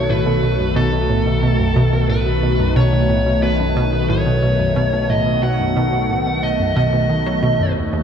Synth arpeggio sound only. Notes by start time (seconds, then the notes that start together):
0.10 A2
0.26 B2
0.43 B2
0.60 F#2
0.76 B2
0.93 B2
1.10 A2
1.26 B2
1.43 B2
1.60 F#2
1.76 B2
1.93 B2
2.10 A2
2.26 B2
2.43 B2
2.60 F#2
2.76 B2
2.93 B2
3.10 A2
3.26 B2
3.43 B2
3.60 F#2
3.76 B2
3.93 B2
4.10 A2
4.26 B2
4.43 B2
4.59 F#2
4.76 B2
4.93 B2
5.10 A2
5.26 B2
5.43 B2
5.60 F#2
5.76 B2
5.93 B2
6.10 A2
6.26 B2
6.43 B2
6.60 F#2
6.76 B2
6.93 B2
7.09 D#3
7.26 F#3
7.43 B2
7.60 F#2
7.76 D#2
7.93 D#2